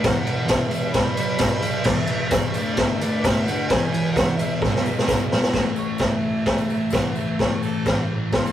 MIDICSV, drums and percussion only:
0, 0, Header, 1, 2, 480
1, 0, Start_track
1, 0, Key_signature, 3, "major"
1, 0, Tempo, 460829
1, 32, Time_signature, 4, 2, 24, 8
1, 8877, End_track
2, 0, Start_track
2, 0, Title_t, "Drums"
2, 39, Note_on_c, 9, 51, 106
2, 42, Note_on_c, 9, 54, 81
2, 44, Note_on_c, 9, 36, 116
2, 48, Note_on_c, 9, 38, 112
2, 143, Note_off_c, 9, 51, 0
2, 146, Note_off_c, 9, 54, 0
2, 148, Note_off_c, 9, 36, 0
2, 152, Note_off_c, 9, 38, 0
2, 278, Note_on_c, 9, 51, 76
2, 282, Note_on_c, 9, 54, 30
2, 382, Note_off_c, 9, 51, 0
2, 386, Note_off_c, 9, 54, 0
2, 502, Note_on_c, 9, 51, 104
2, 511, Note_on_c, 9, 38, 126
2, 512, Note_on_c, 9, 54, 92
2, 514, Note_on_c, 9, 36, 113
2, 606, Note_off_c, 9, 51, 0
2, 615, Note_off_c, 9, 38, 0
2, 616, Note_off_c, 9, 54, 0
2, 618, Note_off_c, 9, 36, 0
2, 738, Note_on_c, 9, 51, 71
2, 770, Note_on_c, 9, 54, 83
2, 842, Note_off_c, 9, 51, 0
2, 875, Note_off_c, 9, 54, 0
2, 976, Note_on_c, 9, 51, 107
2, 982, Note_on_c, 9, 36, 110
2, 986, Note_on_c, 9, 38, 109
2, 1080, Note_off_c, 9, 51, 0
2, 1086, Note_off_c, 9, 36, 0
2, 1090, Note_off_c, 9, 38, 0
2, 1218, Note_on_c, 9, 51, 88
2, 1227, Note_on_c, 9, 54, 80
2, 1322, Note_off_c, 9, 51, 0
2, 1331, Note_off_c, 9, 54, 0
2, 1440, Note_on_c, 9, 51, 127
2, 1450, Note_on_c, 9, 38, 127
2, 1457, Note_on_c, 9, 36, 127
2, 1470, Note_on_c, 9, 54, 111
2, 1545, Note_off_c, 9, 51, 0
2, 1554, Note_off_c, 9, 38, 0
2, 1561, Note_off_c, 9, 36, 0
2, 1574, Note_off_c, 9, 54, 0
2, 1691, Note_on_c, 9, 51, 84
2, 1719, Note_on_c, 9, 54, 83
2, 1795, Note_off_c, 9, 51, 0
2, 1823, Note_off_c, 9, 54, 0
2, 1916, Note_on_c, 9, 49, 102
2, 1926, Note_on_c, 9, 38, 105
2, 1931, Note_on_c, 9, 36, 117
2, 1950, Note_on_c, 9, 54, 80
2, 2021, Note_off_c, 9, 49, 0
2, 2030, Note_off_c, 9, 38, 0
2, 2035, Note_off_c, 9, 36, 0
2, 2054, Note_off_c, 9, 54, 0
2, 2157, Note_on_c, 9, 51, 77
2, 2182, Note_on_c, 9, 54, 29
2, 2261, Note_off_c, 9, 51, 0
2, 2286, Note_off_c, 9, 54, 0
2, 2401, Note_on_c, 9, 51, 109
2, 2405, Note_on_c, 9, 54, 108
2, 2408, Note_on_c, 9, 36, 123
2, 2410, Note_on_c, 9, 38, 115
2, 2505, Note_off_c, 9, 51, 0
2, 2510, Note_off_c, 9, 54, 0
2, 2512, Note_off_c, 9, 36, 0
2, 2514, Note_off_c, 9, 38, 0
2, 2643, Note_on_c, 9, 51, 74
2, 2653, Note_on_c, 9, 54, 85
2, 2748, Note_off_c, 9, 51, 0
2, 2757, Note_off_c, 9, 54, 0
2, 2881, Note_on_c, 9, 51, 102
2, 2889, Note_on_c, 9, 36, 107
2, 2891, Note_on_c, 9, 38, 120
2, 2986, Note_off_c, 9, 51, 0
2, 2993, Note_off_c, 9, 36, 0
2, 2995, Note_off_c, 9, 38, 0
2, 3138, Note_on_c, 9, 54, 79
2, 3139, Note_on_c, 9, 51, 81
2, 3242, Note_off_c, 9, 54, 0
2, 3243, Note_off_c, 9, 51, 0
2, 3375, Note_on_c, 9, 36, 127
2, 3379, Note_on_c, 9, 51, 118
2, 3387, Note_on_c, 9, 54, 106
2, 3388, Note_on_c, 9, 38, 120
2, 3479, Note_off_c, 9, 36, 0
2, 3483, Note_off_c, 9, 51, 0
2, 3491, Note_off_c, 9, 54, 0
2, 3492, Note_off_c, 9, 38, 0
2, 3624, Note_on_c, 9, 54, 78
2, 3632, Note_on_c, 9, 51, 71
2, 3729, Note_off_c, 9, 54, 0
2, 3736, Note_off_c, 9, 51, 0
2, 3853, Note_on_c, 9, 51, 92
2, 3853, Note_on_c, 9, 54, 83
2, 3855, Note_on_c, 9, 36, 116
2, 3862, Note_on_c, 9, 38, 118
2, 3957, Note_off_c, 9, 51, 0
2, 3957, Note_off_c, 9, 54, 0
2, 3959, Note_off_c, 9, 36, 0
2, 3966, Note_off_c, 9, 38, 0
2, 4105, Note_on_c, 9, 51, 82
2, 4209, Note_off_c, 9, 51, 0
2, 4334, Note_on_c, 9, 36, 123
2, 4343, Note_on_c, 9, 51, 99
2, 4343, Note_on_c, 9, 54, 97
2, 4353, Note_on_c, 9, 38, 118
2, 4439, Note_off_c, 9, 36, 0
2, 4447, Note_off_c, 9, 51, 0
2, 4448, Note_off_c, 9, 54, 0
2, 4457, Note_off_c, 9, 38, 0
2, 4573, Note_on_c, 9, 51, 73
2, 4586, Note_on_c, 9, 54, 78
2, 4678, Note_off_c, 9, 51, 0
2, 4690, Note_off_c, 9, 54, 0
2, 4811, Note_on_c, 9, 36, 120
2, 4825, Note_on_c, 9, 38, 68
2, 4837, Note_on_c, 9, 54, 30
2, 4915, Note_off_c, 9, 36, 0
2, 4930, Note_off_c, 9, 38, 0
2, 4941, Note_off_c, 9, 54, 0
2, 4950, Note_on_c, 9, 38, 63
2, 5054, Note_off_c, 9, 38, 0
2, 5057, Note_on_c, 9, 54, 72
2, 5161, Note_off_c, 9, 54, 0
2, 5189, Note_on_c, 9, 38, 77
2, 5290, Note_on_c, 9, 36, 119
2, 5294, Note_off_c, 9, 38, 0
2, 5297, Note_on_c, 9, 38, 101
2, 5298, Note_on_c, 9, 54, 119
2, 5394, Note_off_c, 9, 36, 0
2, 5401, Note_off_c, 9, 38, 0
2, 5402, Note_off_c, 9, 54, 0
2, 5537, Note_on_c, 9, 38, 97
2, 5641, Note_off_c, 9, 38, 0
2, 5650, Note_on_c, 9, 38, 90
2, 5754, Note_off_c, 9, 38, 0
2, 5760, Note_on_c, 9, 54, 27
2, 5765, Note_on_c, 9, 36, 100
2, 5765, Note_on_c, 9, 49, 62
2, 5774, Note_on_c, 9, 38, 118
2, 5864, Note_off_c, 9, 54, 0
2, 5869, Note_off_c, 9, 49, 0
2, 5870, Note_off_c, 9, 36, 0
2, 5878, Note_off_c, 9, 38, 0
2, 6000, Note_on_c, 9, 54, 77
2, 6104, Note_off_c, 9, 54, 0
2, 6231, Note_on_c, 9, 54, 93
2, 6239, Note_on_c, 9, 49, 58
2, 6246, Note_on_c, 9, 36, 108
2, 6248, Note_on_c, 9, 38, 112
2, 6335, Note_off_c, 9, 54, 0
2, 6343, Note_off_c, 9, 49, 0
2, 6350, Note_off_c, 9, 36, 0
2, 6352, Note_off_c, 9, 38, 0
2, 6730, Note_on_c, 9, 36, 101
2, 6730, Note_on_c, 9, 49, 59
2, 6731, Note_on_c, 9, 54, 24
2, 6739, Note_on_c, 9, 38, 113
2, 6834, Note_off_c, 9, 36, 0
2, 6834, Note_off_c, 9, 49, 0
2, 6835, Note_off_c, 9, 54, 0
2, 6843, Note_off_c, 9, 38, 0
2, 6851, Note_on_c, 9, 54, 74
2, 6956, Note_off_c, 9, 54, 0
2, 6978, Note_on_c, 9, 54, 63
2, 7082, Note_off_c, 9, 54, 0
2, 7093, Note_on_c, 9, 54, 28
2, 7191, Note_off_c, 9, 54, 0
2, 7191, Note_on_c, 9, 54, 94
2, 7216, Note_on_c, 9, 36, 122
2, 7218, Note_on_c, 9, 49, 63
2, 7228, Note_on_c, 9, 38, 125
2, 7296, Note_off_c, 9, 54, 0
2, 7320, Note_off_c, 9, 36, 0
2, 7323, Note_off_c, 9, 49, 0
2, 7332, Note_off_c, 9, 38, 0
2, 7452, Note_on_c, 9, 54, 64
2, 7556, Note_off_c, 9, 54, 0
2, 7700, Note_on_c, 9, 54, 24
2, 7701, Note_on_c, 9, 36, 99
2, 7706, Note_on_c, 9, 49, 59
2, 7715, Note_on_c, 9, 38, 106
2, 7804, Note_off_c, 9, 54, 0
2, 7805, Note_off_c, 9, 36, 0
2, 7810, Note_off_c, 9, 49, 0
2, 7819, Note_off_c, 9, 38, 0
2, 7944, Note_on_c, 9, 54, 66
2, 8048, Note_off_c, 9, 54, 0
2, 8185, Note_on_c, 9, 54, 81
2, 8186, Note_on_c, 9, 36, 107
2, 8191, Note_on_c, 9, 49, 59
2, 8200, Note_on_c, 9, 38, 114
2, 8289, Note_off_c, 9, 54, 0
2, 8290, Note_off_c, 9, 36, 0
2, 8295, Note_off_c, 9, 49, 0
2, 8304, Note_off_c, 9, 38, 0
2, 8668, Note_on_c, 9, 49, 60
2, 8671, Note_on_c, 9, 36, 104
2, 8678, Note_on_c, 9, 38, 103
2, 8772, Note_off_c, 9, 49, 0
2, 8775, Note_off_c, 9, 36, 0
2, 8782, Note_off_c, 9, 38, 0
2, 8808, Note_on_c, 9, 54, 78
2, 8877, Note_off_c, 9, 54, 0
2, 8877, End_track
0, 0, End_of_file